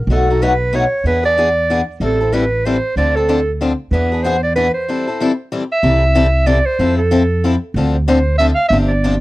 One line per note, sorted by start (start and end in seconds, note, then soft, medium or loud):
0.07 0.84 B1 medium
0.07 0.28 B2 medium
0.07 0.28 F#3 medium
0.11 0.28 A3 medium
0.11 0.28 D#4 medium
0.11 0.28 F#4 medium
0.11 0.44 A4 medium
0.30 0.41 A3 soft
0.30 0.41 D#4 soft
0.30 0.41 F#4 soft
0.42 0.52 B2 medium
0.42 0.52 F#3 medium
0.42 0.52 A3 medium
0.42 0.52 D#4 medium
0.42 0.53 F#4 medium
0.42 0.77 B4 medium
0.73 0.83 B2 medium
0.73 0.83 F#3 medium
0.73 0.83 A3 medium
0.73 0.84 D#4 medium
0.73 0.84 F#4 medium
0.73 1.06 C#5 medium
1.04 1.81 E2 medium
1.04 1.23 E3 medium
1.04 1.23 B3 medium
1.04 1.23 D4 medium
1.04 1.22 G#4 medium
1.04 1.23 B4 medium
1.23 1.37 B3 soft
1.23 1.37 D4 soft
1.23 1.36 G#4 soft
1.23 1.84 D5 loud
1.38 1.48 E3 medium
1.38 1.48 B3 medium
1.38 1.48 D4 medium
1.38 1.48 G#4 medium
1.70 1.80 E3 medium
1.70 1.80 B3 medium
1.70 1.80 D4 medium
1.70 1.80 G#4 medium
2.00 2.77 A1 medium
2.00 2.19 E3 medium
2.00 2.19 G3 medium
2.00 2.19 C4 medium
2.00 2.19 E4 medium
2.00 2.34 A4 medium
2.00 2.19 A4 medium
2.20 2.32 C4 soft
2.20 2.33 E4 soft
2.20 2.32 A4 soft
2.32 2.43 E3 medium
2.32 2.43 G3 medium
2.32 2.44 C4 medium
2.32 2.44 E4 medium
2.32 2.44 A4 medium
2.32 2.67 B4 medium
2.65 2.75 E3 medium
2.65 2.76 G3 medium
2.65 2.76 C4 medium
2.65 2.76 E4 medium
2.65 2.76 A4 medium
2.65 2.97 C5 medium
2.96 3.73 D2 medium
2.96 3.15 D3 medium
2.96 3.15 F3 medium
2.96 3.15 C4 medium
2.96 3.15 D4 medium
2.96 3.15 A4 medium
2.96 3.17 D5 medium
3.16 3.28 C4 soft
3.16 3.28 D4 soft
3.16 3.51 A4 medium
3.16 3.28 A4 medium
3.29 3.39 D3 medium
3.29 3.39 F3 medium
3.29 3.39 C4 medium
3.29 3.39 D4 medium
3.29 3.39 A4 medium
3.61 3.71 D3 medium
3.61 3.71 F3 medium
3.61 3.71 C4 medium
3.61 3.71 D4 medium
3.61 3.72 A4 medium
3.91 4.68 E2 medium
3.91 4.10 E3 medium
3.91 4.10 B3 medium
3.91 4.11 D4 medium
3.91 4.11 G#4 medium
3.91 4.25 B4 medium
4.12 4.24 B3 soft
4.12 4.24 D4 soft
4.12 4.24 G#4 soft
4.23 4.35 E3 medium
4.23 4.35 B3 medium
4.23 4.35 D4 medium
4.23 4.36 G#4 medium
4.23 4.42 C5 medium
4.43 4.55 D5 medium
4.55 4.67 E3 medium
4.55 4.67 B3 medium
4.55 4.67 D4 medium
4.55 4.67 G#4 medium
4.55 4.73 B4 medium
4.74 5.47 C5 medium
4.88 5.06 E3 medium
4.88 5.06 G3 medium
4.88 5.07 C4 medium
4.88 5.07 E4 medium
4.88 5.06 A4 medium
5.07 5.20 C4 soft
5.07 5.20 E4 soft
5.07 5.20 A4 soft
5.20 5.31 E3 medium
5.20 5.31 G3 medium
5.20 5.31 C4 medium
5.20 5.31 E4 medium
5.20 5.31 A4 loud
5.52 5.62 E3 medium
5.52 5.62 G3 medium
5.52 5.63 C4 medium
5.52 5.63 E4 medium
5.52 5.63 A4 medium
5.72 6.48 E5 medium
5.83 6.60 C2 medium
5.83 6.03 C3 medium
5.83 6.03 E3 medium
5.83 6.03 G3 medium
5.83 6.03 C4 medium
5.83 6.03 E4 medium
5.83 6.03 A4 medium
6.15 6.26 C3 medium
6.15 6.26 E3 medium
6.15 6.26 G3 medium
6.15 6.26 C4 medium
6.15 6.26 E4 medium
6.15 6.26 A4 loud
6.46 6.57 C3 medium
6.46 6.58 E3 medium
6.46 6.58 G3 medium
6.46 6.58 C4 medium
6.46 6.58 E4 medium
6.46 6.58 A4 medium
6.46 6.67 D5 medium
6.66 6.97 C5 loud
6.79 7.55 F2 medium
6.79 6.99 F3 medium
6.79 6.99 C4 medium
6.79 7.00 E4 medium
6.79 7.00 A4 medium
6.97 7.57 A4 medium
7.11 7.22 F3 medium
7.11 7.22 C4 medium
7.11 7.22 E4 medium
7.11 7.22 A4 medium
7.44 7.54 F3 medium
7.44 7.54 C4 medium
7.44 7.54 E4 medium
7.44 7.55 A4 medium
7.74 8.51 D2 medium
7.74 7.95 D3 medium
7.74 7.95 F3 medium
7.74 7.96 C4 medium
7.74 7.96 D4 medium
7.74 7.96 A4 medium
8.08 8.18 D3 loud
8.08 8.18 F3 medium
8.08 8.18 C4 medium
8.08 8.18 D4 medium
8.08 8.18 A4 loud
8.08 8.37 C5 medium
8.38 8.49 D3 medium
8.38 8.50 F3 medium
8.38 8.50 C4 medium
8.38 8.50 D4 medium
8.38 8.50 A4 medium
8.38 8.47 E5 loud
8.55 8.68 F5 loud
8.69 9.20 G1 medium
8.69 8.91 C3 medium
8.69 8.91 F3 medium
8.69 8.91 C4 medium
8.69 8.77 E5 loud
8.73 8.91 D4 medium
8.73 8.91 G4 medium
8.88 9.18 D5 medium
9.04 9.14 C3 medium
9.04 9.14 F3 medium
9.04 9.14 C4 medium
9.04 9.14 D4 medium
9.04 9.14 G4 medium